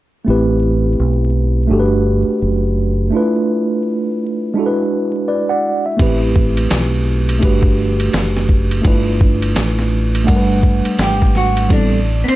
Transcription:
0.25 fingered electric bass A1, tine electric piano A3 C4 E4
0.29 tine electric piano G4 B4
0.99 fingered electric bass B1
1.67 fingered electric bass G1, tine electric piano A3 D4 F#4
1.72 tine electric piano G4 A4
1.80 tine electric piano B4
2.28 muted fingered electric bass stroke
2.42 fingered electric bass F#1
3.11 tine electric piano A3 D4 E4
3.15 tine electric piano F4 B4
4.54 tine electric piano G#3 D4 E4
4.58 tine electric piano F#4 A4
4.66 tine electric piano B4
5.28 tine electric piano B4 D5
5.49 tine electric piano D5 F#5
5.86 tine electric piano E5
5.97 fingered electric bass A1, tine electric piano A3 C4 E4, kick, ride
6.01 tine electric piano G4 B4
6.36 kick
6.57 ride
6.70 fingered electric bass B1, snare, hi-hat pedal, ride
7.29 ride
7.39 tine electric piano A3 D4 F#4, kick, ride
7.43 fingered electric bass G1, tine electric piano G4 B4
7.63 kick
8.00 ride
8.13 fingered electric bass F#1, snare, hi-hat pedal, ride
8.36 snare
8.49 kick
8.71 ride
8.82 fingered electric bass G1, tine electric piano A3 D4 E4, kick, ride
8.86 tine electric piano F4 B4
9.21 kick
9.42 ride
9.56 fingered electric bass A1, snare, hi-hat pedal, ride
9.79 snare
10.15 ride
10.24 tine electric piano A3 D4 F#5, ride
10.28 fingered electric bass G1, tine electric piano G3 A#4, kick
10.36 tine electric piano B4
10.63 kick
10.85 ride
10.99 fingered electric bass G#1, hollow-body jazz guitar G4, snare, hi-hat pedal, ride
11.22 kick, snare
11.35 hollow-body jazz guitar F#4, snare
11.57 ride
11.69 fingered electric bass A1, tine electric piano G3 B3 C4 E4 A4, hollow-body jazz guitar D4, kick, ride
12.24 hollow-body jazz guitar B3, muted fingered electric bass stroke
12.28 hollow-body jazz guitar C4, ride

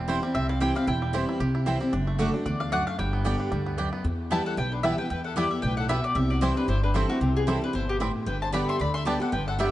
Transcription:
Already playing: upright bass E1, steel-string acoustic guitar E2, five-string banjo G3 C4 G4
0.08 steel-string acoustic guitar E3 G3 C4 E4, mandolin C4 E4 C5 G5, five-string banjo E4
0.22 five-string banjo G3, steel-string acoustic guitar C4 E4
0.35 upright bass C2, steel-string acoustic guitar C3, five-string banjo C4, mandolin E5
0.49 five-string banjo E4, mandolin F5
0.60 steel-string acoustic guitar E3 G3 C4 E4, mandolin C4 E4 C5 G5, five-string banjo G4
0.75 five-string banjo G3, steel-string acoustic guitar C4 E4, mandolin F5
0.87 upright bass E1, steel-string acoustic guitar E2, five-string banjo E4, mandolin G5
1.02 five-string banjo G3
1.13 steel-string acoustic guitar E3 G3 C4 E4, mandolin C4 E4 C5 G5, five-string banjo G4
1.29 five-string banjo E4
1.40 upright bass C2, steel-string acoustic guitar C3, five-string banjo G4
1.55 five-string banjo E4
1.66 steel-string acoustic guitar E3 G3 C4 E4, mandolin C4 E4 C5 G5, five-string banjo C4
1.80 five-string banjo G3, steel-string acoustic guitar C4 E4
1.93 upright bass F#1, steel-string acoustic guitar F#2, five-string banjo D4
2.07 five-string banjo A3
2.19 steel-string acoustic guitar D3 A3 D4 F#4, mandolin A3 F#4 D5 F#5, five-string banjo D4
2.34 five-string banjo D4, steel-string acoustic guitar D4 F#4
2.46 upright bass D2, steel-string acoustic guitar E2, five-string banjo D4, mandolin D5
2.60 five-string banjo D4, mandolin F5
2.72 steel-string acoustic guitar F#2, mandolin A3 F#4 D5 F#5, five-string banjo D4
2.87 five-string banjo A3, mandolin F5
2.98 upright bass G1, steel-string acoustic guitar G2, five-string banjo G3, mandolin G5
3.13 five-string banjo B3
3.24 steel-string acoustic guitar D3 G3 B3 G4, five-string banjo G3, mandolin B3 G4 D5 G5
3.40 five-string banjo D4
3.51 upright bass D2, steel-string acoustic guitar G2, five-string banjo G3
3.66 five-string banjo B3
3.78 steel-string acoustic guitar F#2, mandolin B3 G4 D5 G5, five-string banjo D4
3.93 five-string banjo B3
4.04 upright bass E2, steel-string acoustic guitar E2
4.31 steel-string acoustic guitar E3 G3 B3 E4, five-string banjo G3 B3 E4, mandolin B3 E4 B4 G5 A5, fiddle E5
4.46 fiddle A4, mandolin F#5
4.57 upright bass B1, steel-string acoustic guitar B2, fiddle B4, mandolin G5
4.72 fiddle D4, mandolin B4
4.83 steel-string acoustic guitar E3 G3 B3 E4, five-string banjo G3 B3 E4, mandolin B3 E4 B4 E5 G5, fiddle G4
4.98 steel-string acoustic guitar B3 E4, fiddle B4, mandolin G5
5.10 steel-string acoustic guitar E2, upright bass E2, fiddle B4, mandolin G5
5.24 fiddle A4, mandolin F#5
5.36 steel-string acoustic guitar E3 G3 B3 E4, five-string banjo G3 B3 E4, mandolin B3 E4 B4 D5 G5, fiddle G4
5.51 steel-string acoustic guitar B3 E4, fiddle G4, mandolin E5
5.62 upright bass B1, steel-string acoustic guitar A2, fiddle B4, mandolin G5
5.77 fiddle A4, mandolin F#5
5.89 steel-string acoustic guitar B2, five-string banjo G3 B3 E4, mandolin B3 E4 B4 E5 G5, fiddle G4
6.04 fiddle F#4, mandolin D5
6.15 upright bass C2, steel-string acoustic guitar C3, fiddle G4, mandolin E5
6.30 fiddle F#4, mandolin D5
6.41 steel-string acoustic guitar E3 G3 C4 E4, five-string banjo G3 C4 E4, mandolin C4 E4 C5 G5, fiddle E4
6.56 steel-string acoustic guitar C4 E4, fiddle D4, mandolin B4
6.68 upright bass G1, steel-string acoustic guitar G2, fiddle E4, mandolin C5
6.82 fiddle D4, mandolin B4
6.94 steel-string acoustic guitar E3 G3 C4 E4, five-string banjo G3 C4 E4, mandolin C4 E4 A4 C5 G5, fiddle C4
7.09 fiddle A3, steel-string acoustic guitar C4 E4, mandolin F#4
7.21 upright bass C2, steel-string acoustic guitar C3, fiddle C4, mandolin G4
7.36 fiddle B3, mandolin G#4
7.47 steel-string acoustic guitar E3 G3 C4 E4, five-string banjo G3 C4 E4, mandolin C4 E4 A4 C5 G5, fiddle C4
7.61 steel-string acoustic guitar C4 E4, fiddle D4, mandolin B4
7.73 upright bass G1, steel-string acoustic guitar B2, fiddle E4, mandolin C5
7.89 fiddle B3, mandolin G4
8.00 steel-string acoustic guitar A2, five-string banjo G3 C4 E4, mandolin C4 E4 C5 G5
8.26 upright bass G1, steel-string acoustic guitar G2, fiddle B4, mandolin G5
8.42 fiddle C5, mandolin A5
8.52 steel-string acoustic guitar D3 G3 B3 G4, five-string banjo G3 B3 D4, mandolin B3 G4 D5 G5 B5, fiddle D5
8.68 fiddle E5, mandolin C6
8.80 upright bass D2, steel-string acoustic guitar D3, fiddle D5, mandolin B5
8.94 fiddle E5, mandolin C6
9.05 steel-string acoustic guitar D3 G3 B3 G4, five-string banjo G3 B3 D4, mandolin B3 G4 D5 G5 A5, fiddle D5
9.20 steel-string acoustic guitar B3 G4, fiddle A4, mandolin F#5
9.32 upright bass G1, steel-string acoustic guitar G2, fiddle B4, mandolin G5
9.47 fiddle A4, mandolin F#5
9.59 steel-string acoustic guitar D3 G3 B3 G4, five-string banjo G3 B3 D4, mandolin B3 G4 D5 E5 G5, fiddle G4

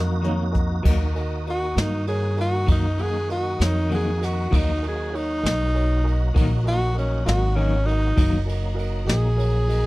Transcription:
Already playing: upright bass F2, clean electric guitar F#3 A#3 D#4, tonewheel organ A#3 D#4 F#4, tenor saxophone D#4, grand piano F#4 A#4 D#5
0.21 clean electric guitar D#3 F#3 A#3 D#4, grand piano F#4 A#4 C#5 A#5, closed hi-hat
0.52 grand piano F#4 A#4 D#5, kick, closed hi-hat
0.82 upright bass D#2, clean electric guitar D#3 F#3 A#3 D#4, grand piano F#4 A#4 D#5, tonewheel organ F#4, kick, crash
0.86 tonewheel organ D#3 A#3 D#4
1.14 grand piano F#4 A#4 D#5, ride
1.46 grand piano F#4 A#4 D#5, ride
1.50 tenor saxophone F#4
1.75 upright bass G2, clean electric guitar F#3 A#3 D#4, grand piano F#4 A#4 D#5, snare, ride
1.80 tenor saxophone D#4
2.07 grand piano F#4 A#4 C#5, tenor saxophone G#4, ride
2.36 grand piano F#4 A#4 D#5, ride
2.41 tenor saxophone F#4
2.66 upright bass F#2, clean electric guitar D#3 F#3 A#3 D#4, grand piano F#4 A#4 D#5, kick, ride
2.72 tenor saxophone D#4
2.97 clean electric guitar F#3 A#3 D#4, grand piano F#4 A#4 F#5, ride
3.02 tenor saxophone G#4
3.28 grand piano F#4 A#4 D#5, tenor saxophone F#4, ride
3.57 upright bass F2, clean electric guitar F#3 A#3 D#4, grand piano F#4 A#4, ride
3.61 tenor saxophone D#4, grand piano C#5, snare
3.89 clean electric guitar D#3 F#3 A#3 D#4, grand piano F#4 A#4 F#5, ride
3.95 tenor saxophone G#4
4.20 grand piano F#4 A#4 D#5, snare, ride
4.24 tenor saxophone F#4
4.50 upright bass D#2, clean electric guitar D#3 F#3 A#3 D#4, tonewheel organ F#3 A#3 D#4 F#4, grand piano F#4 A#4 D#5, kick, ride
4.56 tenor saxophone D#4
4.82 grand piano F#4 A#4 D#5, ride
4.88 tenor saxophone G#4
5.11 grand piano F#4 A#4 C#5, ride
5.16 tenor saxophone D#4
5.42 upright bass B1, clean electric guitar A#3 D#4, grand piano F#4 A#4 D#5, ride
5.46 clean electric guitar F#3, snare
5.73 grand piano F#4 A#4 C#5, ride
6.03 grand piano F#4 A#4 D#5
6.07 ride
6.34 upright bass A#1, clean electric guitar D#3 F#3 A#3 D#4, grand piano F#4 A#4 D#5, kick, ride
6.63 clean electric guitar A#3 D#4, grand piano F#4 A#4 D#5
6.68 clean electric guitar F#3, tenor saxophone F#4, ride
6.93 grand piano F#4 A#4 D#5
6.98 tenor saxophone C#4, ride
7.25 upright bass G#1, clean electric guitar F#3 A#3 D#4, grand piano F#4 A#4 D#5, tenor saxophone F#4, snare, ride
7.55 clean electric guitar D#3 F#3 D#4, tenor saxophone C#4, grand piano F#4 A#4 D#5, ride
7.59 clean electric guitar A#3
7.85 tenor saxophone D#4, grand piano F#4 A#4 D#5, ride
8.15 upright bass F#1, clean electric guitar D#3 F#3 A#3 D#4, tonewheel organ F#3 A#3 D#4, grand piano F#4 A#4 D#5, kick, ride
8.45 grand piano F#4 A#4 D#5, ride
8.74 grand piano F#4 A#4 D#5
8.79 ride
9.04 upright bass A#1, clean electric guitar D#4, grand piano F#4 A#4 D#5, tenor saxophone G#4, ride
9.09 clean electric guitar F#3 A#3, snare
9.36 grand piano F#4 A#4 C#5, ride
9.67 grand piano F#4 A#4 D#5, ride

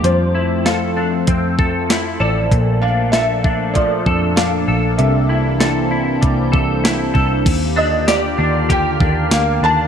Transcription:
Already playing: clean electric guitar A#3 D4 G4
0.03 picked electric bass F2, analog synth pad F3 A3 C4 A4, clean electric guitar F3, felt piano C5, closed hi-hat
0.35 clean electric guitar E4
0.65 clean electric guitar A4, felt piano F5, snare, closed hi-hat
0.97 clean electric guitar D4
1.27 picked electric bass F2, clean electric guitar C4, kick, closed hi-hat
1.59 clean electric guitar A4, kick
1.90 clean electric guitar E4, snare, closed hi-hat
2.20 picked electric bass A1, clean electric guitar A4, felt piano D5
2.51 picked electric bass A#1, clean electric guitar A#2, analog synth pad A3 A#3 D4, kick, closed hi-hat
2.82 clean electric guitar D4, felt piano F5
3.12 clean electric guitar A4, felt piano E5, snare, closed hi-hat
3.44 clean electric guitar D4, kick
3.74 clean electric guitar F3, felt piano D5, kick, closed hi-hat
4.06 picked electric bass F2, clean electric guitar A4, kick
4.36 clean electric guitar D4, felt piano F5, snare, closed hi-hat
4.68 picked electric bass A#1, clean electric guitar A4
4.98 picked electric bass C2, clean electric guitar C3, analog synth pad E3 C4, felt piano E5, closed hi-hat
5.29 clean electric guitar E4
5.60 clean electric guitar A4, synth texture C5, snare, closed hi-hat
5.91 clean electric guitar E4
6.21 picked electric bass C2, clean electric guitar G3, kick, closed hi-hat
6.52 clean electric guitar A4, kick
6.84 clean electric guitar E4, snare, closed hi-hat
7.14 picked electric bass C2, clean electric guitar A4, kick
7.45 picked electric bass D#2, analog synth pad D3 A#3 F4 G4, kick, closed hi-hat, crash
7.76 clean electric guitar D4, synth texture A#4, felt piano D#5
8.08 clean electric guitar G4, felt piano D5, snare, closed hi-hat, tambourine
8.38 picked electric bass D#2, clean electric guitar D4
8.69 clean electric guitar G4, felt piano G5, kick, closed hi-hat
9.00 picked electric bass D#2, clean electric guitar D4, kick
9.31 picked electric bass D2, clean electric guitar A#3, felt piano F5, snare, closed hi-hat, tambourine
9.62 picked electric bass D#2, clean electric guitar D4, felt piano A5

